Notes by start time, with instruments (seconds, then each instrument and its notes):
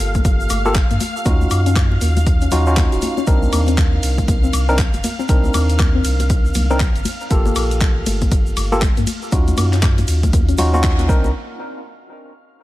Already playing: tine electric piano A#3 F4 G4 A4, string machine F5 F6
0.00 sub bass G1, open hi-hat
0.15 synth arpeggio sound A#3, kick, closed hi-hat, high conga, shaker
0.25 kick, closed hi-hat, muted conga, shaker
0.40 shaker
0.50 sub bass G1, synth arpeggio sound A3, open hi-hat, high conga, high woodblock, shaker
0.65 tine electric piano A#3 F4 G4 A4, muted conga, shaker
0.75 kick, clap, closed hi-hat, shaker
0.91 sub bass G2, synth arpeggio sound A#3, closed hi-hat, muted conga, shaker
1.00 open hi-hat, high conga, shaker
1.16 shaker
1.25 sub bass D#2, synth arpeggio sound A#3, tine electric piano C#4 D#4 F4 F#4, kick, closed hi-hat, muted conga, shaker
1.41 high conga, shaker
1.51 sub bass F#2, open hi-hat, muted conga, high woodblock, shaker
1.66 synth arpeggio sound C#4, closed hi-hat, shaker
1.75 kick, clap, closed hi-hat, high conga, high woodblock, shaker
1.92 muted conga
2.01 sub bass D#2, synth arpeggio sound A#3, open hi-hat, shaker
2.17 closed hi-hat, muted conga, high conga, shaker
2.27 kick, closed hi-hat, shaker
2.41 synth arpeggio sound C#4, closed hi-hat, shaker
2.51 sub bass D#2, tine electric piano C#4 D#4 F4 F#4, synth arpeggio sound F4, open hi-hat, muted conga, high conga, low conga, shaker
2.67 tine electric piano C#4 D#4 F4 F#4, shaker
2.77 synth arpeggio sound A#3, kick, clap, closed hi-hat, muted conga, shaker
2.92 sub bass D#1, synth arpeggio sound F#4, closed hi-hat, shaker
3.02 open hi-hat, high conga, shaker
3.17 synth arpeggio sound C#4, muted conga, shaker
3.27 sub bass C2, tine electric piano C4 D4 D#4 A#4, kick, closed hi-hat, muted conga, shaker
3.43 high conga, shaker
3.53 sub bass D#2, synth arpeggio sound A#3, open hi-hat, ride, high woodblock, shaker
3.67 synth arpeggio sound C4, closed hi-hat, muted conga, shaker
3.77 kick, clap, closed hi-hat, high conga, shaker
3.93 muted conga
4.03 sub bass C2, open hi-hat, ride, shaker
4.18 kick, closed hi-hat, high conga, shaker
4.28 synth arpeggio sound A#3, kick, closed hi-hat, muted conga, shaker
4.44 synth arpeggio sound C4, shaker
4.53 sub bass C2, open hi-hat, ride, muted conga, high conga, high woodblock, shaker
4.69 tine electric piano C4 D4 D#4 A#4, shaker
4.79 kick, clap, closed hi-hat, shaker
4.94 sub bass G1, closed hi-hat, muted conga, shaker
5.04 synth arpeggio sound A#3, open hi-hat, ride, high conga, shaker
5.19 synth arpeggio sound C4, muted conga, shaker
5.29 sub bass C2, tine electric piano C4 D4 D#4 A#4, kick, closed hi-hat, shaker
5.44 high conga, shaker
5.54 sub bass D#2, open hi-hat, ride, muted conga, high woodblock, shaker
5.70 closed hi-hat, shaker
5.79 synth arpeggio sound A#3, kick, clap, closed hi-hat, muted conga, high conga, high woodblock, shaker
5.95 synth arpeggio sound C4
6.04 sub bass C2, open hi-hat, ride, shaker
6.19 closed hi-hat, muted conga, high conga, shaker
6.30 kick, closed hi-hat, shaker
6.45 muted conga, shaker
6.54 sub bass C2, synth arpeggio sound A#3, open hi-hat, ride, high conga, low conga, shaker
6.70 tine electric piano C4 D4 D#4 A#4, synth arpeggio sound C4, shaker
6.80 kick, clap, closed hi-hat, muted conga, shaker
6.96 sub bass G1, closed hi-hat, shaker
7.05 open hi-hat, ride, muted conga, high conga, shaker
7.21 shaker
7.30 sub bass G1, synth arpeggio sound A3, tine electric piano A#3 F4 G4 A4, kick, closed hi-hat, shaker
7.46 synth arpeggio sound A#3, muted conga, high conga, shaker
7.55 sub bass A#1, open hi-hat, ride, high woodblock, shaker
7.71 closed hi-hat, muted conga, shaker
7.81 kick, clap, closed hi-hat, high conga, shaker
8.06 sub bass G1, synth arpeggio sound A3, open hi-hat, ride, muted conga, shaker
8.21 synth arpeggio sound A#3, kick, closed hi-hat, high conga, shaker
8.31 kick, closed hi-hat, muted conga, shaker
8.47 shaker
8.57 sub bass G1, open hi-hat, ride, high conga, high woodblock, shaker
8.72 tine electric piano A#3 F4 G4 A4, muted conga, shaker
8.82 synth arpeggio sound A3, kick, clap, closed hi-hat, shaker
8.97 sub bass G2, synth arpeggio sound A#3, closed hi-hat, muted conga, shaker
9.07 open hi-hat, ride, high conga, shaker
9.22 shaker
9.32 sub bass D#2, tine electric piano C#4 D#4 F4 F#4, kick, closed hi-hat, muted conga, shaker
9.48 closed hi-hat, high conga, shaker
9.57 sub bass F#2, synth arpeggio sound A#3, open hi-hat, ride, muted conga, high woodblock, shaker
9.73 synth arpeggio sound C#4, clap, closed hi-hat, shaker
9.82 kick, clap, closed hi-hat, high conga, high woodblock, shaker
9.98 closed hi-hat, muted conga, shaker
10.08 sub bass D#2, open hi-hat, ride, shaker
10.23 kick, closed hi-hat, muted conga, high conga, shaker
10.33 synth arpeggio sound A#3, kick, closed hi-hat, shaker
10.49 synth arpeggio sound C#4, closed hi-hat, shaker
10.58 sub bass D#2, tine electric piano C#4 D#4 F4 F#4, open hi-hat, ride, muted conga, high conga, low conga, shaker
10.73 synth arpeggio sound A#3, tine electric piano C#4 D#4 F4 F#4, shaker
10.83 kick, clap, closed hi-hat, muted conga, shaker
10.99 synth arpeggio sound A#3, closed hi-hat, shaker
11.08 sub bass C2, synth arpeggio sound A#3, tine electric piano C4 D4 D#4 A#4, kick, high conga, shaker
11.24 muted conga, shaker